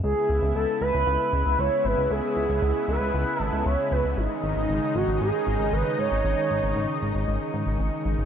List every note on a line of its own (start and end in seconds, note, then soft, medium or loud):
0.04 0.14 C#2 loud
0.04 8.25 C#3 medium
0.04 8.25 G#3 medium
0.04 4.13 B3 medium
0.04 4.13 E4 medium
0.04 0.52 G#4 loud
0.29 0.40 C#2 medium
0.42 0.53 C#2 medium
0.55 0.66 C#2 loud
0.55 0.80 A4 loud
0.81 0.92 C#2 loud
0.81 1.60 B4 loud
0.94 1.05 C#2 medium
1.07 1.18 C#2 loud
1.33 1.43 C#2 medium
1.46 1.56 C#2 medium
1.59 1.69 C#2 loud
1.59 1.86 C#5 loud
1.85 1.95 G#1 medium
1.85 2.10 B4 loud
1.98 2.08 C#2 medium
2.11 2.21 C#2 loud
2.11 2.84 G#4 loud
2.36 2.47 C#2 medium
2.49 2.60 C#2 medium
2.62 2.73 C#2 loud
2.88 2.99 C#2 loud
2.88 3.42 B4 loud
3.01 3.12 C#2 medium
3.14 3.25 C#2 loud
3.40 3.50 G#1 medium
3.40 3.68 A4 loud
3.53 3.63 C#2 medium
3.66 3.76 C#2 loud
3.66 3.91 C#5 loud
3.92 4.02 C#2 medium
3.92 4.03 B4 loud
4.05 4.15 C#2 medium
4.17 4.28 G#1 loud
4.17 8.25 D#3 medium
4.17 4.97 D#4 loud
4.17 8.25 D#4 medium
4.43 4.54 G#1 medium
4.56 4.67 G#1 medium
4.69 4.80 G#1 loud
4.95 5.06 G#1 loud
4.95 5.20 F#4 loud
5.08 5.18 G#1 medium
5.21 5.31 G#1 loud
5.21 5.74 G#4 loud
5.47 5.57 G#1 medium
5.60 5.70 G#1 medium
5.73 5.83 G#1 loud
5.73 5.98 B4 loud
5.98 6.09 G#2 loud
5.98 7.76 C#5 loud
6.12 6.22 G#1 medium
6.24 6.35 G#1 loud
6.50 6.61 G#1 medium
6.63 6.74 G#1 medium
6.76 6.87 G#1 loud
7.02 7.13 G#1 medium
7.15 7.25 G#1 medium
7.28 7.38 G#1 loud
7.54 7.64 G#2 medium
7.67 7.77 G#1 medium
7.79 7.90 G#1 loud
8.05 8.16 G#1 medium
8.18 8.25 G#1 medium